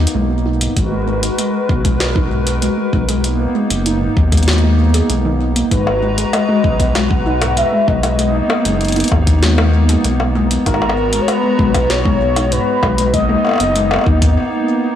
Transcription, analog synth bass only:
0, 0, Header, 1, 2, 480
1, 0, Start_track
1, 0, Key_signature, 5, "minor"
1, 0, Tempo, 618557
1, 594, Time_signature, 4, 2, 24, 8
1, 11604, End_track
2, 0, Start_track
2, 0, Title_t, "Analog synth bass"
2, 0, Program_c, 0, 38
2, 114, Note_on_c, 0, 35, 82
2, 533, Note_off_c, 0, 35, 0
2, 594, Note_on_c, 0, 32, 97
2, 1013, Note_off_c, 0, 32, 0
2, 1314, Note_on_c, 0, 35, 81
2, 2093, Note_off_c, 0, 35, 0
2, 2274, Note_on_c, 0, 35, 96
2, 2693, Note_off_c, 0, 35, 0
2, 2874, Note_on_c, 0, 30, 101
2, 3173, Note_off_c, 0, 30, 0
2, 3234, Note_on_c, 0, 39, 79
2, 3893, Note_off_c, 0, 39, 0
2, 3954, Note_on_c, 0, 35, 85
2, 4373, Note_off_c, 0, 35, 0
2, 4434, Note_on_c, 0, 32, 97
2, 4853, Note_off_c, 0, 32, 0
2, 5154, Note_on_c, 0, 35, 78
2, 5933, Note_off_c, 0, 35, 0
2, 6114, Note_on_c, 0, 35, 95
2, 6533, Note_off_c, 0, 35, 0
2, 6714, Note_on_c, 0, 30, 101
2, 7013, Note_off_c, 0, 30, 0
2, 7074, Note_on_c, 0, 39, 78
2, 7733, Note_off_c, 0, 39, 0
2, 7794, Note_on_c, 0, 35, 85
2, 8213, Note_off_c, 0, 35, 0
2, 8274, Note_on_c, 0, 32, 97
2, 8693, Note_off_c, 0, 32, 0
2, 8994, Note_on_c, 0, 35, 80
2, 9773, Note_off_c, 0, 35, 0
2, 9954, Note_on_c, 0, 35, 97
2, 10373, Note_off_c, 0, 35, 0
2, 10554, Note_on_c, 0, 30, 104
2, 10853, Note_off_c, 0, 30, 0
2, 10914, Note_on_c, 0, 39, 80
2, 11154, Note_off_c, 0, 39, 0
2, 11604, End_track
0, 0, End_of_file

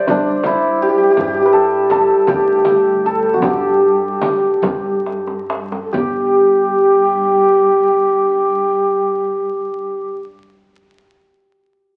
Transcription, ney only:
0, 0, Header, 1, 2, 480
1, 0, Start_track
1, 0, Tempo, 735294
1, 766, Time_signature, 6, 3, 24, 8
1, 1732, Tempo, 782269
1, 2692, Tempo, 834492
1, 3172, Tempo, 906344
1, 6832, End_track
2, 0, Start_track
2, 0, Title_t, "Ney"
2, 0, Program_c, 0, 77
2, 50, Note_on_c, 0, 62, 71
2, 292, Note_on_c, 0, 64, 70
2, 302, Note_off_c, 0, 62, 0
2, 535, Note_on_c, 0, 67, 83
2, 545, Note_off_c, 0, 64, 0
2, 888, Note_off_c, 0, 67, 0
2, 896, Note_on_c, 0, 67, 74
2, 1286, Note_off_c, 0, 67, 0
2, 1488, Note_on_c, 0, 67, 75
2, 1978, Note_on_c, 0, 69, 70
2, 1987, Note_off_c, 0, 67, 0
2, 2196, Note_off_c, 0, 69, 0
2, 2200, Note_on_c, 0, 67, 75
2, 3148, Note_off_c, 0, 67, 0
2, 3591, Note_on_c, 0, 69, 56
2, 3635, Note_on_c, 0, 67, 99
2, 3643, Note_off_c, 0, 69, 0
2, 5894, Note_off_c, 0, 67, 0
2, 6832, End_track
0, 0, End_of_file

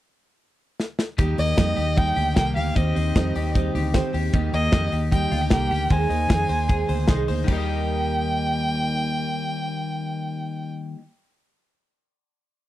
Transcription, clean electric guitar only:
0, 0, Header, 1, 2, 480
1, 0, Start_track
1, 0, Key_signature, -3, "major"
1, 0, Tempo, 393443
1, 1449, Time_signature, 4, 2, 24, 8
1, 15477, End_track
2, 0, Start_track
2, 0, Title_t, "Clean electric guitar"
2, 0, Program_c, 0, 27
2, 1444, Note_on_c, 0, 51, 75
2, 1449, Note_on_c, 0, 67, 66
2, 1687, Note_on_c, 0, 58, 47
2, 1925, Note_on_c, 0, 63, 52
2, 2148, Note_off_c, 0, 67, 0
2, 2153, Note_on_c, 0, 67, 55
2, 2396, Note_off_c, 0, 63, 0
2, 2401, Note_on_c, 0, 63, 55
2, 2636, Note_off_c, 0, 67, 0
2, 2641, Note_on_c, 0, 67, 51
2, 2864, Note_off_c, 0, 58, 0
2, 2878, Note_on_c, 0, 58, 60
2, 3111, Note_off_c, 0, 67, 0
2, 3116, Note_on_c, 0, 67, 56
2, 3353, Note_off_c, 0, 51, 0
2, 3358, Note_on_c, 0, 51, 70
2, 3364, Note_off_c, 0, 67, 0
2, 3369, Note_on_c, 0, 67, 55
2, 3410, Note_off_c, 0, 58, 0
2, 3604, Note_on_c, 0, 60, 49
2, 3848, Note_off_c, 0, 63, 0
2, 3853, Note_on_c, 0, 63, 51
2, 4091, Note_off_c, 0, 67, 0
2, 4096, Note_on_c, 0, 67, 60
2, 4324, Note_off_c, 0, 63, 0
2, 4329, Note_on_c, 0, 63, 54
2, 4571, Note_off_c, 0, 67, 0
2, 4576, Note_on_c, 0, 67, 59
2, 4797, Note_off_c, 0, 60, 0
2, 4811, Note_on_c, 0, 60, 59
2, 5038, Note_off_c, 0, 67, 0
2, 5053, Note_on_c, 0, 67, 60
2, 5288, Note_off_c, 0, 67, 0
2, 5293, Note_off_c, 0, 51, 0
2, 5298, Note_on_c, 0, 51, 74
2, 5303, Note_on_c, 0, 67, 62
2, 5335, Note_off_c, 0, 60, 0
2, 5538, Note_on_c, 0, 58, 54
2, 5766, Note_off_c, 0, 63, 0
2, 5771, Note_on_c, 0, 63, 47
2, 5998, Note_off_c, 0, 67, 0
2, 6013, Note_on_c, 0, 67, 54
2, 6236, Note_off_c, 0, 63, 0
2, 6241, Note_on_c, 0, 63, 55
2, 6479, Note_off_c, 0, 67, 0
2, 6483, Note_on_c, 0, 65, 59
2, 6604, Note_off_c, 0, 65, 0
2, 6604, Note_on_c, 0, 67, 46
2, 6721, Note_off_c, 0, 58, 0
2, 6726, Note_on_c, 0, 58, 62
2, 6952, Note_off_c, 0, 67, 0
2, 6966, Note_on_c, 0, 67, 66
2, 7198, Note_off_c, 0, 51, 0
2, 7203, Note_on_c, 0, 51, 72
2, 7211, Note_on_c, 0, 72, 68
2, 7253, Note_off_c, 0, 67, 0
2, 7431, Note_off_c, 0, 63, 0
2, 7436, Note_on_c, 0, 63, 51
2, 7673, Note_on_c, 0, 68, 53
2, 7709, Note_off_c, 0, 58, 0
2, 7906, Note_off_c, 0, 72, 0
2, 7920, Note_on_c, 0, 72, 61
2, 8144, Note_off_c, 0, 68, 0
2, 8159, Note_on_c, 0, 68, 49
2, 8390, Note_off_c, 0, 72, 0
2, 8404, Note_on_c, 0, 72, 55
2, 8645, Note_off_c, 0, 63, 0
2, 8650, Note_on_c, 0, 63, 57
2, 8870, Note_off_c, 0, 72, 0
2, 8885, Note_on_c, 0, 72, 58
2, 9074, Note_off_c, 0, 51, 0
2, 9079, Note_on_c, 0, 51, 82
2, 9120, Note_on_c, 0, 55, 77
2, 9154, Note_on_c, 0, 58, 77
2, 9170, Note_off_c, 0, 68, 0
2, 9173, Note_off_c, 0, 72, 0
2, 9176, Note_off_c, 0, 63, 0
2, 9181, Note_on_c, 0, 63, 80
2, 9215, Note_on_c, 0, 67, 80
2, 9245, Note_on_c, 0, 75, 76
2, 13349, Note_off_c, 0, 51, 0
2, 13390, Note_off_c, 0, 55, 0
2, 13424, Note_off_c, 0, 58, 0
2, 13451, Note_off_c, 0, 63, 0
2, 13485, Note_off_c, 0, 67, 0
2, 13515, Note_off_c, 0, 75, 0
2, 15477, End_track
0, 0, End_of_file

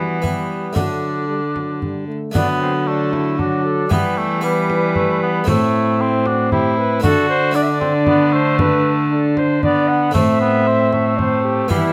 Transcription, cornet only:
0, 0, Header, 1, 2, 480
1, 0, Start_track
1, 0, Tempo, 525394
1, 700, Time_signature, 3, 2, 24, 8
1, 3579, Tempo, 518583
1, 10994, End_track
2, 0, Start_track
2, 0, Title_t, "Cornet"
2, 0, Program_c, 0, 56
2, 0, Note_on_c, 0, 66, 67
2, 208, Note_off_c, 0, 66, 0
2, 212, Note_on_c, 0, 67, 74
2, 687, Note_off_c, 0, 67, 0
2, 694, Note_on_c, 0, 69, 77
2, 1644, Note_off_c, 0, 69, 0
2, 2147, Note_on_c, 0, 62, 98
2, 2256, Note_off_c, 0, 62, 0
2, 2382, Note_on_c, 0, 60, 95
2, 2491, Note_off_c, 0, 60, 0
2, 2624, Note_on_c, 0, 62, 96
2, 2854, Note_on_c, 0, 64, 87
2, 2868, Note_off_c, 0, 62, 0
2, 3093, Note_on_c, 0, 66, 99
2, 3106, Note_off_c, 0, 64, 0
2, 3326, Note_off_c, 0, 66, 0
2, 3331, Note_on_c, 0, 69, 99
2, 3578, Note_on_c, 0, 67, 107
2, 3592, Note_off_c, 0, 69, 0
2, 4058, Note_on_c, 0, 71, 113
2, 4072, Note_off_c, 0, 67, 0
2, 5021, Note_off_c, 0, 71, 0
2, 5026, Note_on_c, 0, 64, 107
2, 5746, Note_on_c, 0, 66, 99
2, 5760, Note_off_c, 0, 64, 0
2, 5979, Note_off_c, 0, 66, 0
2, 5985, Note_on_c, 0, 67, 109
2, 6229, Note_on_c, 0, 71, 102
2, 6243, Note_off_c, 0, 67, 0
2, 6461, Note_off_c, 0, 71, 0
2, 6467, Note_on_c, 0, 69, 121
2, 6698, Note_off_c, 0, 69, 0
2, 6704, Note_on_c, 0, 72, 127
2, 6936, Note_on_c, 0, 74, 118
2, 6950, Note_off_c, 0, 72, 0
2, 7008, Note_on_c, 0, 76, 87
2, 7022, Note_off_c, 0, 74, 0
2, 7079, Note_on_c, 0, 74, 113
2, 7093, Note_off_c, 0, 76, 0
2, 7657, Note_off_c, 0, 74, 0
2, 7662, Note_on_c, 0, 72, 119
2, 7899, Note_off_c, 0, 72, 0
2, 7908, Note_on_c, 0, 71, 120
2, 8213, Note_off_c, 0, 71, 0
2, 8387, Note_on_c, 0, 69, 92
2, 8610, Note_off_c, 0, 69, 0
2, 8627, Note_on_c, 0, 72, 113
2, 8861, Note_off_c, 0, 72, 0
2, 8866, Note_on_c, 0, 74, 120
2, 9098, Note_on_c, 0, 78, 113
2, 9112, Note_off_c, 0, 74, 0
2, 9328, Note_off_c, 0, 78, 0
2, 9334, Note_on_c, 0, 76, 122
2, 10299, Note_on_c, 0, 72, 103
2, 10313, Note_off_c, 0, 76, 0
2, 10534, Note_off_c, 0, 72, 0
2, 10540, Note_on_c, 0, 67, 103
2, 10772, Note_off_c, 0, 67, 0
2, 10778, Note_on_c, 0, 64, 118
2, 10994, Note_off_c, 0, 64, 0
2, 10994, End_track
0, 0, End_of_file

